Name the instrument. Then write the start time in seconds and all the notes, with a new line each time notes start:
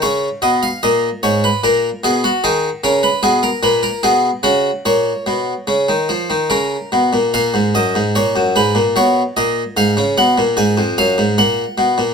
harpsichord
0.02 C#3 C#5
0.42 B2 D#5
0.63 F5
0.83 A#2 D#5
1.23 G#2 C#5
1.44 B4
1.64 A#2 A#4
2.04 B2 G#4
2.24 F#4
2.44 D#3 G#4
2.84 C#3 A#4
3.03 B4
3.23 B2 G#4
3.43 A#4
3.63 A#2 B4
3.83 A#4
4.03 B2 G#4
4.43 C#3 F#4
4.86 A#2 C#5
5.26 B2
5.67 C#3
5.89 D#3
6.09 F3
6.30 D#3
6.50 C#3 A#4
6.92 B2
7.13 A#2
7.34 A#2 F5
7.54 G#2
7.75 F#2 D#5
7.95 G#2
8.15 A#2 C#5
8.36 F#2
8.56 G#2 B4
8.75 A#2
8.96 B2 C#5
9.37 A#2 D#5
9.77 G#2 F5
9.97 C#3
10.18 B2 F#5
10.38 A#2
10.57 G#2 G#5
10.78 F2
10.98 F#2 F5
11.18 G#2
11.38 A#2 F#5
11.78 B2
11.98 A#2